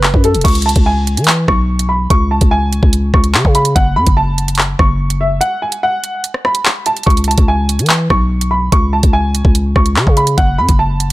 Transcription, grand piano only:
0, 0, Header, 1, 2, 480
1, 0, Start_track
1, 0, Key_signature, 4, "minor"
1, 0, Tempo, 413793
1, 520, Time_signature, 4, 2, 24, 8
1, 12904, End_track
2, 0, Start_track
2, 0, Title_t, "Grand piano"
2, 0, Program_c, 0, 0
2, 0, Note_on_c, 0, 71, 80
2, 254, Note_off_c, 0, 71, 0
2, 283, Note_on_c, 0, 69, 80
2, 491, Note_off_c, 0, 69, 0
2, 515, Note_on_c, 0, 85, 93
2, 727, Note_off_c, 0, 85, 0
2, 762, Note_on_c, 0, 81, 79
2, 971, Note_off_c, 0, 81, 0
2, 999, Note_on_c, 0, 80, 86
2, 1450, Note_off_c, 0, 80, 0
2, 1717, Note_on_c, 0, 85, 82
2, 2170, Note_off_c, 0, 85, 0
2, 2190, Note_on_c, 0, 83, 72
2, 2404, Note_off_c, 0, 83, 0
2, 2440, Note_on_c, 0, 85, 95
2, 2649, Note_off_c, 0, 85, 0
2, 2680, Note_on_c, 0, 81, 73
2, 2890, Note_off_c, 0, 81, 0
2, 2914, Note_on_c, 0, 80, 94
2, 3368, Note_off_c, 0, 80, 0
2, 3639, Note_on_c, 0, 85, 79
2, 4090, Note_off_c, 0, 85, 0
2, 4119, Note_on_c, 0, 83, 83
2, 4329, Note_off_c, 0, 83, 0
2, 4356, Note_on_c, 0, 78, 96
2, 4567, Note_off_c, 0, 78, 0
2, 4596, Note_on_c, 0, 83, 93
2, 4808, Note_off_c, 0, 83, 0
2, 4835, Note_on_c, 0, 81, 80
2, 5288, Note_off_c, 0, 81, 0
2, 5558, Note_on_c, 0, 85, 79
2, 6010, Note_off_c, 0, 85, 0
2, 6039, Note_on_c, 0, 76, 75
2, 6249, Note_off_c, 0, 76, 0
2, 6272, Note_on_c, 0, 78, 98
2, 6485, Note_off_c, 0, 78, 0
2, 6521, Note_on_c, 0, 80, 75
2, 6730, Note_off_c, 0, 80, 0
2, 6765, Note_on_c, 0, 78, 97
2, 7213, Note_off_c, 0, 78, 0
2, 7485, Note_on_c, 0, 83, 79
2, 7934, Note_off_c, 0, 83, 0
2, 7962, Note_on_c, 0, 81, 83
2, 8171, Note_off_c, 0, 81, 0
2, 8194, Note_on_c, 0, 85, 92
2, 8406, Note_off_c, 0, 85, 0
2, 8442, Note_on_c, 0, 81, 80
2, 8651, Note_off_c, 0, 81, 0
2, 8680, Note_on_c, 0, 80, 87
2, 9131, Note_off_c, 0, 80, 0
2, 9399, Note_on_c, 0, 85, 84
2, 9850, Note_off_c, 0, 85, 0
2, 9870, Note_on_c, 0, 83, 76
2, 10084, Note_off_c, 0, 83, 0
2, 10119, Note_on_c, 0, 85, 92
2, 10329, Note_off_c, 0, 85, 0
2, 10359, Note_on_c, 0, 81, 76
2, 10569, Note_off_c, 0, 81, 0
2, 10593, Note_on_c, 0, 80, 96
2, 11047, Note_off_c, 0, 80, 0
2, 11318, Note_on_c, 0, 85, 79
2, 11770, Note_off_c, 0, 85, 0
2, 11799, Note_on_c, 0, 83, 84
2, 12009, Note_off_c, 0, 83, 0
2, 12036, Note_on_c, 0, 78, 94
2, 12247, Note_off_c, 0, 78, 0
2, 12278, Note_on_c, 0, 83, 94
2, 12488, Note_off_c, 0, 83, 0
2, 12517, Note_on_c, 0, 81, 81
2, 12904, Note_off_c, 0, 81, 0
2, 12904, End_track
0, 0, End_of_file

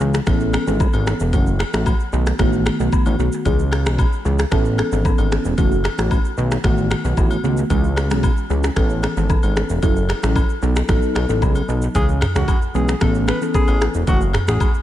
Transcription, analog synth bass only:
0, 0, Header, 1, 2, 480
1, 0, Start_track
1, 0, Key_signature, 4, "minor"
1, 0, Tempo, 530973
1, 1203, Time_signature, 4, 2, 24, 8
1, 13399, End_track
2, 0, Start_track
2, 0, Title_t, "Analog synth bass"
2, 0, Program_c, 0, 38
2, 3, Note_on_c, 0, 37, 94
2, 183, Note_off_c, 0, 37, 0
2, 243, Note_on_c, 0, 33, 96
2, 516, Note_off_c, 0, 33, 0
2, 608, Note_on_c, 0, 32, 93
2, 787, Note_off_c, 0, 32, 0
2, 848, Note_on_c, 0, 32, 95
2, 1027, Note_off_c, 0, 32, 0
2, 1088, Note_on_c, 0, 28, 81
2, 1203, Note_on_c, 0, 30, 120
2, 1217, Note_off_c, 0, 28, 0
2, 1476, Note_off_c, 0, 30, 0
2, 1568, Note_on_c, 0, 33, 86
2, 1748, Note_off_c, 0, 33, 0
2, 1923, Note_on_c, 0, 35, 99
2, 2102, Note_off_c, 0, 35, 0
2, 2164, Note_on_c, 0, 33, 95
2, 2436, Note_off_c, 0, 33, 0
2, 2528, Note_on_c, 0, 35, 83
2, 2614, Note_off_c, 0, 35, 0
2, 2768, Note_on_c, 0, 33, 98
2, 2854, Note_off_c, 0, 33, 0
2, 2883, Note_on_c, 0, 35, 84
2, 2977, Note_off_c, 0, 35, 0
2, 3124, Note_on_c, 0, 37, 110
2, 3488, Note_on_c, 0, 35, 95
2, 3502, Note_off_c, 0, 37, 0
2, 3667, Note_off_c, 0, 35, 0
2, 3843, Note_on_c, 0, 37, 94
2, 4022, Note_off_c, 0, 37, 0
2, 4084, Note_on_c, 0, 33, 100
2, 4356, Note_off_c, 0, 33, 0
2, 4448, Note_on_c, 0, 32, 87
2, 4627, Note_off_c, 0, 32, 0
2, 4688, Note_on_c, 0, 32, 93
2, 4867, Note_off_c, 0, 32, 0
2, 4928, Note_on_c, 0, 28, 85
2, 5014, Note_off_c, 0, 28, 0
2, 5044, Note_on_c, 0, 30, 106
2, 5316, Note_off_c, 0, 30, 0
2, 5408, Note_on_c, 0, 33, 91
2, 5587, Note_off_c, 0, 33, 0
2, 5764, Note_on_c, 0, 35, 105
2, 5943, Note_off_c, 0, 35, 0
2, 6004, Note_on_c, 0, 33, 91
2, 6276, Note_off_c, 0, 33, 0
2, 6368, Note_on_c, 0, 35, 88
2, 6454, Note_off_c, 0, 35, 0
2, 6485, Note_on_c, 0, 33, 88
2, 6663, Note_off_c, 0, 33, 0
2, 6724, Note_on_c, 0, 37, 88
2, 6903, Note_off_c, 0, 37, 0
2, 6964, Note_on_c, 0, 37, 116
2, 7329, Note_on_c, 0, 35, 92
2, 7342, Note_off_c, 0, 37, 0
2, 7508, Note_off_c, 0, 35, 0
2, 7684, Note_on_c, 0, 37, 84
2, 7863, Note_off_c, 0, 37, 0
2, 7923, Note_on_c, 0, 33, 100
2, 8196, Note_off_c, 0, 33, 0
2, 8288, Note_on_c, 0, 32, 97
2, 8467, Note_off_c, 0, 32, 0
2, 8529, Note_on_c, 0, 32, 92
2, 8708, Note_off_c, 0, 32, 0
2, 8768, Note_on_c, 0, 28, 85
2, 8854, Note_off_c, 0, 28, 0
2, 8883, Note_on_c, 0, 30, 107
2, 9156, Note_off_c, 0, 30, 0
2, 9249, Note_on_c, 0, 33, 94
2, 9428, Note_off_c, 0, 33, 0
2, 9603, Note_on_c, 0, 35, 102
2, 9782, Note_off_c, 0, 35, 0
2, 9843, Note_on_c, 0, 33, 94
2, 9937, Note_off_c, 0, 33, 0
2, 10083, Note_on_c, 0, 35, 90
2, 10176, Note_off_c, 0, 35, 0
2, 10207, Note_on_c, 0, 33, 84
2, 10324, Note_on_c, 0, 37, 93
2, 10338, Note_off_c, 0, 33, 0
2, 10503, Note_off_c, 0, 37, 0
2, 10562, Note_on_c, 0, 35, 89
2, 10742, Note_off_c, 0, 35, 0
2, 10803, Note_on_c, 0, 37, 121
2, 11076, Note_off_c, 0, 37, 0
2, 11167, Note_on_c, 0, 37, 90
2, 11254, Note_off_c, 0, 37, 0
2, 11523, Note_on_c, 0, 35, 94
2, 11702, Note_off_c, 0, 35, 0
2, 11763, Note_on_c, 0, 33, 109
2, 12036, Note_off_c, 0, 33, 0
2, 12368, Note_on_c, 0, 33, 90
2, 12547, Note_off_c, 0, 33, 0
2, 12608, Note_on_c, 0, 28, 80
2, 12694, Note_off_c, 0, 28, 0
2, 12724, Note_on_c, 0, 30, 116
2, 12996, Note_off_c, 0, 30, 0
2, 13088, Note_on_c, 0, 33, 92
2, 13174, Note_off_c, 0, 33, 0
2, 13399, End_track
0, 0, End_of_file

